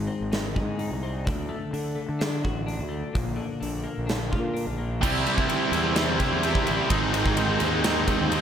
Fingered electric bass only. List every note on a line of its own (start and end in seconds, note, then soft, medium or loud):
0.21 0.58 G#1 medium
0.56 0.90 G#2 medium
0.91 1.25 C2 medium
1.27 1.49 D2 medium
1.73 1.96 D3 medium
2.09 2.43 D3 medium
2.45 2.78 A1 medium
2.80 3.02 D2 medium
3.15 3.38 A#1 medium
3.62 3.84 A#1 medium
3.98 4.34 A#1 medium
4.33 4.66 A#2 medium
4.67 5.01 A#1 medium
5.03 5.25 C2 medium
5.72 6.17 E2 medium
6.20 6.30 C3 loud
6.31 6.53 E2 medium
6.68 6.79 A1 medium
6.90 7.57 G#1 medium
7.61 8.16 D#2 medium
8.20 8.41 D#2 medium